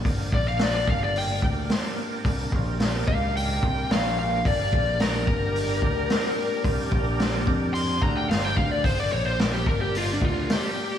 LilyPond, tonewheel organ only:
\new Staff \with { instrumentName = "Tonewheel organ" } { \time 4/4 \key g \minor \tempo 4 = 109 <bes d' g' bes'>1~ | <bes d' g' bes'>1 | <d' g' bes'>1~ | <d' g' bes'>1 |
\tuplet 3/2 { <aes' b' ees''>8 <g' bes' d''>4~ } <g' bes' d''>2. | }